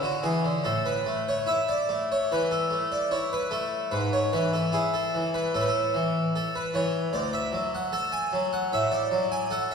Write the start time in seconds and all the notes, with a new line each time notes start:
0.01 D3 F#4
0.23 E3 G#4
0.44 D3
0.64 A2 A4
0.86 B4
1.06 A3
1.29 C#5
1.46 E4 E5
1.69 D5
1.89 A3
2.12 C#5
2.32 E3 B4
2.51 A4
2.71 A3
2.92 D5
3.11 E4 C#5
3.33 B4
3.51 A3 A4
3.91 G#2 B4
4.13 C#5
4.33 E3 B4
4.53 A4
4.72 E4 G#4
4.94 A4
5.14 E3
5.34 B4
5.54 A2 A4
5.61 B4
5.68 A4
5.94 E3
6.36 A4
6.55 B4
6.74 E3 C#5
7.13 D2 D5
7.33 E5
7.53 F#3
7.75 F#5
7.92 A4 A5
8.12 G#5
8.33 F#3
8.53 F#5
8.72 A2 E5
8.91 D5
9.11 F#3
9.32 G#5
9.51 A4 F#5
9.71 E5